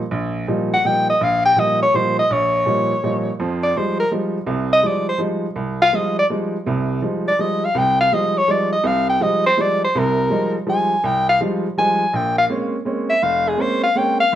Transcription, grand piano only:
0.11 0.43 A#1 medium
0.48 0.73 A#2 medium
0.48 0.73 F3 medium
0.48 0.73 G3 medium
0.48 0.73 D#4 medium
0.85 1.10 A#2 medium
0.85 1.10 F3 soft
0.85 1.10 G3 soft
0.85 1.10 D#4 medium
1.21 1.52 A#1 medium
1.56 1.82 A#2 medium
1.56 1.82 F3 medium
1.56 1.82 G3 medium
1.56 1.82 D#4 medium
1.94 2.19 A#2 medium
1.94 2.19 F3 medium
1.94 2.19 G3 medium
1.94 2.19 D#4 medium
2.30 2.62 A#1 medium
2.66 2.91 A#2 medium
2.66 2.91 F3 medium
2.66 2.92 G3 medium
2.66 2.92 D#4 medium
3.04 3.28 A#2 medium
3.04 3.28 F3 medium
3.04 3.28 G3 medium
3.04 3.29 D#4 medium
3.40 3.71 F2 medium
3.40 3.71 F3 medium
3.76 4.01 F3 medium
3.76 4.01 G3 medium
3.76 4.01 G#3 soft
3.76 4.02 D#4 medium
4.11 4.37 F3 medium
4.11 4.37 G3 medium
4.11 4.37 G#3 soft
4.11 4.37 D#4 medium
4.47 4.79 C2 medium
4.47 4.79 C3 medium
4.83 5.09 F3 medium
4.83 5.09 G3 medium
4.83 5.09 G#3 medium
4.83 5.09 D#4 medium
5.18 5.45 F3 medium
5.18 5.45 G3 medium
5.18 5.45 G#3 soft
5.18 5.45 D#4 medium
5.56 5.88 C2 medium
5.93 6.18 F3 medium
5.93 6.18 G3 medium
5.93 6.19 G#3 medium
5.93 6.19 D#4 medium
6.30 6.55 F3 medium
6.30 6.55 G3 medium
6.30 6.56 G#3 medium
6.30 6.56 D#4 medium
6.66 6.98 C2 medium
6.66 6.98 C3 medium
7.02 7.28 F3 medium
7.02 7.28 G3 soft
7.02 7.28 G#3 medium
7.02 7.28 D#4 medium
7.39 7.64 F3 medium
7.39 7.64 G3 medium
7.39 7.65 G#3 medium
7.39 7.65 D#4 medium
7.75 8.07 C2 medium
7.75 8.07 C3 medium
8.12 8.37 F3 medium
8.12 8.37 G3 medium
8.12 8.37 G#3 medium
8.12 8.37 D#4 medium
8.48 8.73 F3 medium
8.48 8.74 G3 medium
8.48 8.73 G#3 medium
8.48 8.74 D#4 medium
8.84 9.16 C2 medium
8.84 9.16 C3 medium
9.20 9.46 F3 medium
9.20 9.46 G3 medium
9.20 9.46 G#3 medium
9.20 9.47 D#4 medium
9.57 9.83 F3 medium
9.57 9.83 G3 medium
9.57 9.83 G#3 medium
9.57 9.83 D#4 medium
9.95 10.26 C2 medium
9.95 10.26 C3 medium
10.30 10.56 F3 medium
10.30 10.56 G3 medium
10.30 10.56 G#3 medium
10.30 10.56 D#4 medium
10.67 10.92 F3 medium
10.67 10.92 G3 medium
10.67 10.92 G#3 soft
10.67 10.92 D#4 medium
11.04 11.35 C2 medium
11.41 11.65 F3 medium
11.41 11.66 G3 medium
11.41 11.66 G#3 medium
11.41 11.66 D#4 medium
11.78 12.02 F3 medium
11.78 12.02 G3 medium
11.78 12.02 G#3 medium
11.78 12.02 D#4 medium
12.13 12.45 A#1 medium
12.13 12.45 A#2 medium
12.50 12.75 G#3 medium
12.50 12.75 A#3 medium
12.50 12.75 C4 medium
12.50 12.75 C#4 medium
12.85 13.11 G#3 medium
12.85 13.11 A#3 medium
12.85 13.11 C4 soft
12.85 13.11 C#4 medium
13.23 13.54 F1 medium
13.58 13.83 G#3 medium
13.58 13.83 A#3 medium
13.58 13.84 C4 medium
13.58 13.84 C#4 medium
13.95 14.20 G#3 medium
13.95 14.21 A#3 medium
13.95 14.21 C4 medium
13.95 14.21 C#4 medium

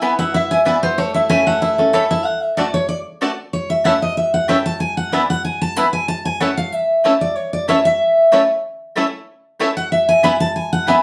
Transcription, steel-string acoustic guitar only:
0.00 0.16 G#5 medium
0.19 0.34 F#5 loud
0.34 0.51 E5 medium
0.51 0.60 G#5 loud
0.66 0.83 D5 medium
0.83 0.98 C5 loud
0.98 1.14 C#5 medium
1.14 1.29 E5 medium
1.29 1.46 G#5 loud
1.47 1.61 F#5 loud
1.62 1.78 E5 medium
1.78 1.93 A4 medium
1.93 2.10 C#5 medium
2.11 2.25 E5 loud
2.25 2.42 F#5 loud
2.42 2.57 E5 medium
2.57 2.73 D5 medium
2.74 2.88 C#5 loud
2.89 2.99 D5 medium
3.53 3.70 C#5 medium
3.70 3.85 E5 loud
3.85 4.01 F#5 medium
4.02 4.17 D#5 loud
4.17 4.33 E5 medium
4.34 4.48 F#5 loud
4.49 4.65 G5 medium
4.66 4.80 A5 loud
4.80 4.97 G#5 loud
4.97 5.12 F#5 loud
5.12 5.29 D5 medium
5.30 5.44 F#5 loud
5.45 5.61 G#5 loud
5.61 5.76 A5 loud
5.76 5.92 B5 loud
5.93 6.08 G#5 medium
6.08 6.25 A5 loud
6.25 6.40 G#5 medium
6.41 6.57 F#5 medium
6.57 6.72 F5 loud
6.72 7.21 E5 medium
7.21 7.36 D5 medium
7.36 7.53 C#5 medium
7.53 7.68 D5 medium
7.69 7.84 E5 medium
7.85 8.60 E5 loud
9.77 9.91 F#5 loud
9.92 10.08 E5 loud
10.09 10.23 G#5 loud
10.24 10.40 B5 loud
10.40 10.55 A5 loud
10.56 10.72 G#5 loud
10.73 10.87 F#5 loud
10.88 11.03 E5 medium

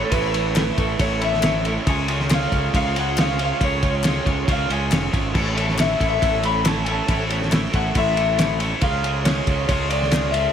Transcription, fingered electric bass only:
0.11 0.70 A1 loud
0.78 0.97 A1 loud
0.99 1.77 A1 medium
1.87 2.45 C#2 loud
2.52 2.71 C#2 loud
2.73 3.51 C#2 loud
3.61 4.19 C#2 loud
4.26 4.45 C#2 loud
4.48 4.67 C#2 medium
4.70 4.89 C#2 medium
4.91 5.11 F1 medium
5.13 5.33 G#1 medium
5.35 5.93 A1 loud
6.01 6.20 A1 loud
6.22 7.00 A1 loud
7.08 7.67 A1 medium
7.74 7.93 A1 medium
7.95 8.73 A1 loud
8.82 9.40 C#2 loud
9.47 9.66 C#2 loud
9.69 10.46 C#2 loud

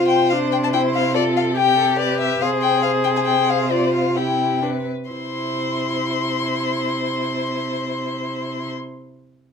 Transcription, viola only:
0.00 0.33 F4 soft
0.32 0.75 D4 soft
0.73 1.17 E4 soft
1.15 1.56 F4 soft
1.57 2.43 G4 soft
2.41 3.71 G#4 soft
3.72 4.17 F4 soft
4.16 4.62 E4 soft
4.62 4.70 D4 soft
5.11 8.69 E4 soft

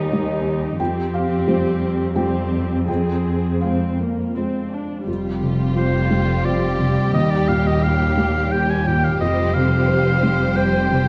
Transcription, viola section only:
0.00 0.80 D#4 soft
0.00 0.76 G4 soft
0.80 2.12 C4 soft
0.80 2.12 G4 medium
2.15 2.86 C4 soft
2.15 2.86 G4 soft
2.88 3.60 C4 soft
2.88 3.61 G#4 soft
3.61 3.96 C4 soft
3.99 4.35 A#3 soft
4.35 4.72 C4 soft
4.72 5.07 D4 soft
5.08 9.17 G3 soft
9.20 11.08 G3 soft

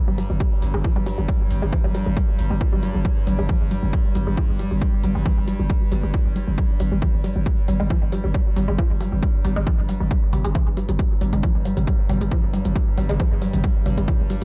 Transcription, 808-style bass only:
0.08 0.18 G1 medium
0.30 0.40 G1 medium
0.62 0.73 G1 loud
0.74 0.84 G1 medium
0.96 1.06 G1 medium
1.18 1.28 G1 medium
1.51 1.62 G1 loud
1.62 1.72 G1 medium
1.84 1.95 G1 medium
2.06 2.17 G1 medium
2.39 2.50 G1 loud
2.51 2.61 G1 medium
2.73 2.83 G1 medium
2.95 3.05 G1 medium
3.27 3.38 G1 loud
3.39 3.49 G1 medium
3.61 3.71 G1 medium
3.83 3.93 G1 medium
4.15 4.26 G1 loud
4.27 4.37 G1 medium
4.49 4.59 G1 medium
4.71 4.81 G1 medium
5.04 5.15 G1 medium
5.15 5.25 G1 medium
5.37 5.47 G1 medium
5.59 5.70 G1 medium
5.92 6.03 G1 loud
6.03 6.14 G1 medium
6.25 6.36 G1 medium
6.47 6.58 G1 medium
6.80 6.91 G1 loud
6.92 7.02 G1 medium
7.14 7.24 G1 medium
7.36 7.46 G1 medium
7.68 7.79 G1 loud
7.80 7.90 G1 medium
8.02 8.12 G1 medium
8.24 8.34 G1 medium
8.56 8.67 G1 medium
8.68 8.78 G1 medium
8.90 9.00 G1 medium
9.12 9.22 G1 medium
9.45 9.56 G1 loud
9.56 9.67 G1 medium
9.78 9.89 G1 medium
10.00 10.11 G1 medium
10.33 10.44 G1 loud
10.45 10.55 G1 medium
10.67 10.77 G1 medium
10.89 10.99 G1 medium
11.21 11.32 G1 loud
11.33 11.43 G1 medium
11.55 11.65 G1 medium
11.77 11.87 G1 medium
12.09 12.20 G1 loud
12.21 12.31 G1 medium
12.43 12.53 G1 medium
12.65 12.75 G1 medium
12.98 13.09 G1 loud
13.09 13.20 G1 medium
13.31 13.42 G1 medium
13.54 13.64 G1 medium
13.86 13.97 G1 loud
13.98 14.08 G1 medium
14.20 14.30 G1 medium

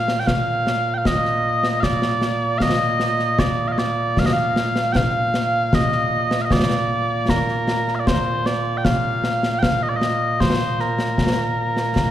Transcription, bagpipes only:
0.00 12.11 A#2 medium
0.00 12.11 A#3 medium
0.00 0.20 F5 loud
0.20 0.27 G5 medium
0.27 0.94 F5 loud
0.94 1.06 F5 medium
0.94 0.98 G5 medium
1.06 1.80 D#5 loud
1.80 2.58 D5 loud
1.80 1.83 F5 loud
2.58 3.39 D#5 loud
2.58 2.62 F5 loud
3.39 3.68 D5 loud
3.68 3.79 D#5 medium
3.68 3.72 F5 medium
3.79 4.19 D5 loud
4.19 4.26 F5 loud
4.26 4.33 D#5 medium
4.33 4.93 F5 loud
4.93 4.97 G5 loud
4.97 5.74 F5 loud
5.74 6.41 D#5 loud
6.41 6.52 D#5 medium
6.41 6.45 F5 medium
6.52 7.30 D5 loud
7.30 7.95 A#4 medium
7.95 8.00 F5 medium
8.00 8.07 D5 medium
8.07 8.46 C5 medium
8.46 8.77 D5 medium
8.78 8.85 G5 medium
8.85 9.59 F5 loud
9.59 9.63 G5 loud
9.63 9.83 F5 loud
9.83 9.89 D#5 loud
9.89 9.97 D5 medium
9.97 10.40 D#5 medium
10.40 10.81 C5 medium
10.81 12.11 A#4 medium

